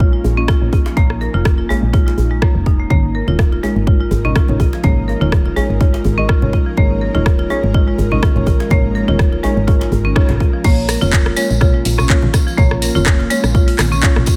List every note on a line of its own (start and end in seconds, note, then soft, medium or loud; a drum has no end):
0.00 0.19 A#1 medium
0.00 2.86 A#3 medium
0.00 0.13 A#3 medium
0.00 2.86 C#4 medium
0.00 0.13 C#4 medium
0.00 10.60 D#4 medium
0.00 0.12 F4 medium
0.00 0.13 F4 medium
0.00 0.13 C#5 medium
0.00 kick loud
0.13 0.19 F4 medium
0.24 0.56 A#1 medium
0.24 djembe bass medium
0.37 0.59 A#3 medium
0.37 0.47 C#4 medium
0.37 0.59 C#4 medium
0.37 0.59 F4 medium
0.37 0.59 D#5 medium
0.48 0.60 F4 loud
0.48 kick loud
0.48 cross-stick loud
0.48 djembe tone medium
0.62 0.69 A#1 loud
0.62 0.72 A#3 medium
0.62 0.72 C#4 medium
0.62 0.72 F4 medium
0.62 0.72 C#5 medium
0.73 0.85 F4 medium
0.73 kick medium
0.73 djembe bass medium
0.86 0.96 F3 medium
0.86 djembe slap medium
0.97 1.28 A#1 medium
0.97 1.09 A#3 loud
0.97 1.31 A#3 loud
0.97 1.31 C#4 medium
0.97 1.31 F4 medium
0.97 1.31 C#5 loud
0.97 kick loud
0.97 djembe slap medium
1.10 cross-stick medium
1.21 1.34 A#4 medium
1.21 djembe tone medium
1.34 1.64 F1 loud
1.34 1.67 A#3 medium
1.34 1.67 C#4 medium
1.34 1.40 F4 medium
1.34 1.67 F4 medium
1.34 1.67 C#5 medium
1.45 kick loud
1.45 cross-stick loud
1.45 djembe tone loud
1.58 1.68 F4 medium
1.69 1.76 G#3 medium
1.69 1.82 A#3 medium
1.69 1.82 C#4 medium
1.69 1.82 F4 medium
1.69 1.82 C#5 medium
1.69 djembe tone loud
1.69 djembe bass medium
1.82 2.13 A#1 medium
1.93 2.07 A#3 medium
1.93 2.07 C#4 medium
1.93 2.05 F4 loud
1.93 2.07 F4 medium
1.93 2.07 C#5 medium
1.93 kick loud
1.93 djembe tone medium
2.07 2.13 F4 medium
2.07 djembe slap medium
2.18 2.49 A#1 medium
2.18 djembe bass medium
2.31 2.41 G#3 medium
2.42 2.54 A#3 medium
2.42 2.55 A#3 loud
2.42 2.55 C#4 medium
2.42 2.55 F4 medium
2.42 2.55 C#5 loud
2.42 kick loud
2.42 cross-stick loud
2.55 2.85 F1 loud
2.66 2.79 D#4 medium
2.66 kick medium
2.66 djembe tone medium
2.79 2.89 A#3 medium
2.90 3.22 G#1 medium
2.90 3.25 G#3 medium
2.90 10.61 G#3 medium
2.90 3.02 A#3 loud
2.90 3.25 C#4 medium
2.90 3.25 D#4 medium
2.90 10.61 A#4 medium
2.90 3.25 C#5 loud
2.90 kick loud
2.90 muted conga soft
2.90 high conga medium
3.15 3.27 A#4 medium
3.27 3.58 D#1 loud
3.27 3.60 G#3 medium
3.27 3.60 C#4 medium
3.27 3.60 D#4 medium
3.27 3.34 F4 loud
3.27 3.60 C#5 medium
3.27 muted conga soft
3.27 high conga loud
3.39 kick loud
3.39 cross-stick loud
3.39 djembe tone medium
3.52 3.62 F4 medium
3.52 muted conga medium
3.63 3.76 G#3 medium
3.63 3.70 G#3 medium
3.63 3.76 C#4 medium
3.63 3.76 D#4 medium
3.63 3.76 C#5 medium
3.63 djembe tone loud
3.76 4.06 G#1 medium
3.76 muted conga soft
3.87 4.00 G#3 medium
3.87 4.00 C#4 medium
3.87 4.00 D#4 medium
3.87 3.99 F4 loud
3.87 4.00 C#5 medium
3.87 kick loud
4.01 4.06 F4 medium
4.11 4.42 G#1 loud
4.11 muted conga medium
4.11 djembe bass medium
4.25 4.46 G#3 medium
4.25 4.46 C#4 medium
4.25 4.35 C#4 loud
4.25 4.46 D#4 medium
4.25 4.46 D#5 medium
4.25 low conga medium
4.36 4.48 F4 medium
4.36 kick loud
4.36 cross-stick loud
4.36 muted conga soft
4.36 high conga medium
4.36 djembe tone loud
4.48 4.57 G#1 loud
4.48 4.60 G#3 medium
4.48 4.60 C#4 medium
4.48 4.60 D#4 medium
4.48 4.60 C#5 medium
4.48 high conga medium
4.48 low conga medium
4.60 4.72 F4 medium
4.60 kick medium
4.60 muted conga medium
4.60 high conga medium
4.60 djembe bass medium
4.73 4.83 F3 medium
4.73 djembe slap medium
4.84 5.15 G#1 loud
4.84 5.18 G#3 medium
4.84 4.96 A#3 loud
4.84 5.18 C#4 medium
4.84 5.18 D#4 medium
4.84 5.18 C#5 loud
4.84 kick loud
4.84 djembe slap medium
4.84 muted conga soft
4.84 high conga medium
4.84 low conga medium
5.08 5.21 A#4 medium
5.08 djembe tone medium
5.21 5.51 D#1 loud
5.21 5.54 G#3 medium
5.21 5.54 C#4 medium
5.21 5.54 D#4 medium
5.21 5.27 F4 loud
5.21 5.54 C#5 medium
5.21 muted conga soft
5.21 high conga medium
5.32 kick loud
5.32 cross-stick loud
5.32 djembe tone medium
5.45 5.55 F4 medium
5.45 muted conga medium
5.56 5.64 G#3 loud
5.56 5.69 G#3 medium
5.56 5.69 C#4 medium
5.56 5.69 D#4 medium
5.56 5.69 C#5 medium
5.56 djembe tone medium
5.56 djembe bass medium
5.70 6.00 G#1 medium
5.70 muted conga soft
5.81 5.94 G#3 medium
5.81 5.94 C#4 medium
5.81 5.94 D#4 medium
5.81 5.93 F4 loud
5.81 5.94 C#5 medium
5.81 kick loud
5.81 djembe tone medium
5.94 6.00 F4 medium
5.94 djembe slap medium
6.04 6.36 G#1 medium
6.04 muted conga soft
6.04 high conga medium
6.04 djembe bass medium
6.18 6.39 G#3 medium
6.18 6.28 C#4 loud
6.18 6.39 C#4 medium
6.18 6.39 D#4 medium
6.18 6.39 D#5 medium
6.18 high conga medium
6.29 6.41 F4 loud
6.29 kick loud
6.29 cross-stick loud
6.29 muted conga soft
6.42 6.50 G#1 loud
6.42 6.53 G#3 medium
6.42 6.53 C#4 medium
6.42 6.53 D#4 medium
6.42 6.53 C#5 medium
6.42 low conga medium
6.53 6.65 F4 medium
6.53 kick medium
6.53 muted conga medium
6.53 djembe tone medium
6.66 6.77 F3 medium
6.77 7.09 G#1 loud
6.77 7.12 G#3 medium
6.77 6.89 A#3 loud
6.77 7.12 C#4 medium
6.77 7.12 D#4 medium
6.77 7.12 C#5 loud
6.77 kick loud
6.77 muted conga medium
6.77 high conga medium
7.01 7.14 A#4 medium
7.15 7.45 D#1 loud
7.15 7.47 G#3 medium
7.15 7.47 C#4 medium
7.15 7.47 D#4 medium
7.15 7.21 F4 loud
7.15 7.47 C#5 medium
7.15 muted conga soft
7.15 high conga medium
7.26 kick loud
7.26 cross-stick loud
7.26 djembe tone medium
7.39 7.49 F4 medium
7.39 muted conga medium
7.50 7.63 G#3 medium
7.50 7.57 G#3 loud
7.50 7.63 C#4 medium
7.50 7.63 D#4 medium
7.50 7.63 C#5 medium
7.50 djembe tone medium
7.63 7.93 G#1 medium
7.63 muted conga soft
7.74 7.87 G#3 medium
7.74 7.87 C#4 medium
7.74 7.87 D#4 medium
7.74 7.86 F4 medium
7.74 7.87 C#5 medium
7.74 kick loud
7.88 7.93 F4 medium
7.98 8.30 G#1 medium
7.98 muted conga medium
7.98 djembe bass medium
8.11 8.33 G#3 medium
8.11 8.33 C#4 medium
8.11 8.22 C#4 loud
8.11 8.33 D#4 medium
8.11 8.33 D#5 medium
8.11 low conga medium
8.23 8.35 F4 loud
8.23 kick loud
8.23 cross-stick loud
8.23 muted conga soft
8.23 high conga medium
8.23 djembe tone medium
8.36 8.44 G#1 loud
8.36 8.47 G#3 medium
8.36 8.47 C#4 medium
8.36 8.47 D#4 medium
8.36 8.47 C#5 medium
8.36 high conga loud
8.36 low conga loud
8.46 8.59 F4 medium
8.46 kick medium
8.46 muted conga soft
8.46 high conga medium
8.46 djembe bass loud
8.60 8.70 F3 medium
8.60 djembe slap medium
8.70 9.02 G#1 loud
8.70 9.05 G#3 loud
8.70 8.83 A#3 loud
8.70 9.05 C#4 medium
8.70 9.05 D#4 medium
8.70 9.05 C#5 loud
8.70 kick loud
8.70 djembe slap medium
8.70 muted conga medium
8.70 high conga medium
8.70 low conga loud
8.95 9.08 A#4 medium
8.95 djembe tone medium
9.08 9.39 D#1 loud
9.08 9.41 G#3 medium
9.08 9.41 C#4 medium
9.08 9.41 D#4 medium
9.08 9.14 F4 loud
9.08 9.41 C#5 medium
9.08 muted conga soft
9.08 high conga loud
9.19 kick loud
9.19 cross-stick loud
9.19 djembe tone medium
9.32 9.42 F4 medium
9.32 muted conga soft
9.43 9.51 G#3 loud
9.43 9.57 G#3 medium
9.43 9.57 C#4 medium
9.43 9.57 D#4 medium
9.43 9.57 C#5 loud
9.43 djembe tone medium
9.43 djembe bass loud
9.57 9.87 G#1 medium
9.57 muted conga soft
9.68 9.81 G#3 medium
9.68 9.81 C#4 medium
9.68 9.81 D#4 medium
9.68 9.80 F4 loud
9.68 9.81 C#5 medium
9.68 kick loud
9.68 djembe tone medium
9.81 9.87 F4 medium
9.81 djembe slap medium
9.91 10.23 G#1 loud
9.91 muted conga medium
9.91 high conga medium
9.91 djembe bass medium
10.05 10.15 C#4 loud
10.05 high conga medium
10.16 10.29 G#3 loud
10.16 10.29 C#4 medium
10.16 10.29 D#4 medium
10.16 10.28 F4 loud
10.16 10.29 C#5 loud
10.16 kick loud
10.16 cross-stick loud
10.29 10.37 G#1 loud
10.29 djembe slap medium
10.29 low conga loud
10.40 10.52 F4 medium
10.40 kick medium
10.40 muted conga medium
10.40 djembe tone medium
10.53 10.64 F3 medium
10.64 10.96 A#1 loud
10.64 10.76 A#3 loud
10.64 14.36 A#3 medium
10.64 10.99 A#3 medium
10.64 10.99 C#4 medium
10.64 14.36 C#4 medium
10.64 14.36 F4 loud
10.64 10.99 F4 medium
10.64 10.99 C#5 loud
10.64 kick loud
10.64 crash loud
10.64 tambourine soft
10.64 muted conga medium
10.64 high conga medium
10.88 11.01 A#4 medium
10.88 cross-stick medium
10.88 open hi-hat medium
10.88 tambourine medium
11.01 11.32 F1 loud
11.01 11.34 A#3 medium
11.01 11.34 C#4 medium
11.01 11.08 F4 loud
11.01 11.34 F4 medium
11.01 11.35 C#5 medium
11.01 tambourine soft
11.01 muted conga soft
11.01 high conga loud
11.13 kick loud
11.13 clap loud
11.13 tambourine soft
11.26 11.36 F4 medium
11.26 cross-stick medium
11.26 muted conga medium
11.36 11.44 G#3 loud
11.36 11.50 A#3 medium
11.36 11.50 C#4 medium
11.36 11.50 F4 medium
11.36 11.50 C#5 medium
11.36 open hi-hat medium
11.36 tambourine medium
11.50 11.81 A#1 medium
11.50 tambourine medium
11.50 muted conga soft
11.61 11.74 A#3 medium
11.61 11.74 C#4 medium
11.61 11.73 F4 loud
11.61 11.74 F4 medium
11.61 11.74 C#5 medium
11.61 kick loud
11.61 cross-stick medium
11.61 tambourine soft
11.61 low conga medium
11.74 11.80 F4 medium
11.85 12.17 A#1 loud
11.85 open hi-hat loud
11.85 tambourine medium
11.85 muted conga medium
11.98 12.08 C#4 loud
11.98 cross-stick medium
11.98 tambourine soft
11.98 low conga medium
12.09 12.23 A#3 medium
12.09 12.23 C#4 medium
12.09 12.22 F4 loud
12.09 12.23 F4 medium
12.09 12.23 C#5 loud
12.09 kick loud
12.09 clap loud
12.09 muted conga soft
12.09 high conga medium
12.22 12.31 A#1 loud
12.22 high conga loud
12.22 low conga loud
12.33 12.46 F4 medium
12.33 kick medium
12.33 cross-stick medium
12.33 open hi-hat medium
12.33 tambourine medium
12.33 muted conga medium
12.33 high conga medium
12.47 12.57 F3 medium
12.47 tambourine soft
12.57 12.89 A#1 loud
12.57 12.70 A#3 loud
12.57 12.92 A#3 medium
12.57 12.92 C#4 medium
12.57 12.92 F4 medium
12.57 12.92 C#5 loud
12.57 kick loud
12.57 tambourine soft
12.57 muted conga soft
12.57 high conga medium
12.57 low conga loud
12.71 cross-stick medium
12.82 12.95 A#4 medium
12.82 open hi-hat medium
12.82 tambourine loud
12.95 13.26 F1 loud
12.95 13.28 A#3 medium
12.95 13.28 C#4 medium
12.95 13.01 F4 loud
12.95 13.28 F4 medium
12.95 13.28 C#5 medium
12.95 tambourine soft
12.95 muted conga soft
12.95 high conga loud
13.06 kick loud
13.06 cross-stick loud
13.06 clap loud
13.19 13.29 F4 medium
13.19 muted conga medium
13.30 13.38 G#3 loud
13.30 13.44 A#3 medium
13.30 13.44 C#4 medium
13.30 13.44 F4 medium
13.30 13.44 C#5 medium
13.30 open hi-hat medium
13.30 tambourine medium
13.44 13.74 A#1 medium
13.44 cross-stick medium
13.44 tambourine medium
13.44 muted conga soft
13.55 13.68 A#3 medium
13.55 13.68 C#4 medium
13.55 13.67 F4 loud
13.55 13.68 F4 medium
13.55 13.68 C#5 medium
13.55 kick loud
13.55 tambourine soft
13.68 13.74 F4 medium
13.68 open hi-hat medium
13.79 14.10 A#1 medium
13.79 cross-stick loud
13.79 clap medium
13.79 open hi-hat loud
13.79 tambourine medium
13.79 muted conga soft
13.79 high conga loud
13.92 14.02 C#4 loud
13.92 tambourine medium
13.92 high conga medium
14.03 14.16 A#3 medium
14.03 14.16 C#4 medium
14.03 14.15 F4 loud
14.03 14.16 F4 medium
14.03 14.16 C#5 loud
14.03 kick loud
14.03 clap loud
14.03 tambourine soft
14.16 14.24 A#1 loud
14.16 cross-stick medium
14.16 low conga medium
14.26 14.36 F4 medium
14.26 kick medium
14.26 open hi-hat medium
14.26 tambourine loud
14.26 muted conga medium